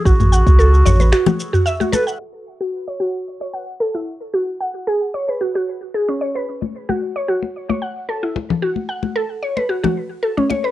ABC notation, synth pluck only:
X:1
M:4/4
L:1/16
Q:"Swing 16ths" 1/4=112
K:F#m
V:1 name="Synth pluck"
F z f2 A z c B F F z F e F A f | z3 F2 c F3 c f2 A E z2 | F z f2 G z c B F F z2 G C c B | z3 F2 c F3 c f2 A E z2 |
F z f2 A z c B F F z2 A C c B |]